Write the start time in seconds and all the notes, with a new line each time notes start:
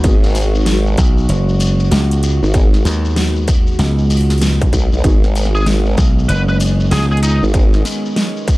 Already playing: D#3 G#3 B3 F#4
0.04 G#1 B3 D#4 F#4 G#4, kick, closed hi-hat, shekere
0.24 snare, shekere
0.26 snare
0.29 snare
0.32 snare
0.35 snare, open hi-hat, shekere
0.55 shekere
0.66 snare, closed hi-hat, shekere
0.87 shekere
0.97 B1, kick, closed hi-hat, shekere
1.17 shekere
1.29 F#1, closed hi-hat, shekere
1.49 shekere
1.60 open hi-hat, shekere
1.80 shekere
1.92 C#2, snare, closed hi-hat, shekere
2.11 closed hi-hat, shekere
2.23 closed hi-hat, shekere
2.43 G#1, shekere
2.54 B3 D#4 F#4 G#4, kick, closed hi-hat, shekere
2.74 snare, shekere
2.85 D#2, snare, open hi-hat, shekere
3.05 shekere
3.16 snare, closed hi-hat, shekere
3.36 shekere
3.48 kick, closed hi-hat, shekere
3.67 shekere
3.79 C#2, snare, closed hi-hat, shekere
3.98 shekere
4.10 open hi-hat, shekere
4.17 open hi-hat
4.21 open hi-hat
4.30 snare, closed hi-hat, open hi-hat, shekere
4.38 snare, closed hi-hat, open hi-hat, shekere
4.61 kick, closed hi-hat, shekere
4.73 B1, kick, closed hi-hat, shekere
4.92 B1, shekere
5.04 G#1 B3 C#4 D#4 F#4 G#4, kick, closed hi-hat, shekere
5.24 snare, shekere
5.35 open hi-hat, shekere
5.45 snare
5.55 G#4, shekere
5.66 snare, closed hi-hat, shekere
5.86 shekere
5.98 B1, kick, closed hi-hat, shekere
6.19 shekere
6.29 F#1 B4, closed hi-hat, shekere
6.48 B4, shekere
6.60 open hi-hat, shekere
6.80 shekere
6.91 C#2 G#4, snare, closed hi-hat, shekere
7.12 G#4, shekere
7.17 closed hi-hat
7.23 D#4, closed hi-hat, shekere
7.43 G#1, shekere
7.54 B3 D#4 F#4 G#4, kick, closed hi-hat, shekere
7.73 snare, shekere
7.85 snare, open hi-hat, shekere
8.06 shekere
8.16 snare, closed hi-hat, shekere
8.37 shekere
8.48 kick, closed hi-hat, shekere